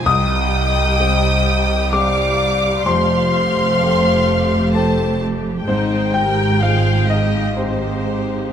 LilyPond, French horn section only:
\new Staff \with { instrumentName = "French horn section" } { \time 3/4 \key c \minor \tempo 4 = 64 ees''2 d''4 | c''2 a'8 r8 | c'8 g'8 f'8 ees'8 c'4 | }